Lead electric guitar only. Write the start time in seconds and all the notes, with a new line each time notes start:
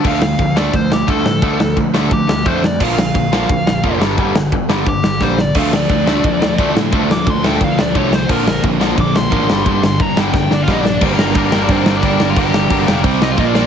0.08 F5
0.57 D5
0.75 C5
0.93 G4
1.10 A4
2.13 G4
2.48 C5
2.66 D5
2.83 F5
2.99 F5
4.89 G4
5.23 C5
5.41 D5
5.58 F5
5.76 D5
7.12 D6
7.30 C6
7.47 G5
7.64 F5
7.81 D5
7.97 C#5
8.15 C5
8.32 A#4
9.00 D6
9.17 C6
9.86 C6
10.02 A#5
10.19 G5
10.37 G5
10.54 D4 D5
10.63 F4 F5
10.71 D#4 D#5
10.80 D4 D5
11.05 C4 C5
11.13 A#3 A#4
11.38 A#3 A#4
11.63 D4 D5
11.71 C4 C5
11.97 D4 D5
12.30 F4 F5
12.39 G4 G5
12.86 F5
13.23 D#4 D#5
13.31 F4 F5
13.39 D#4 D#5
13.47 D4 D5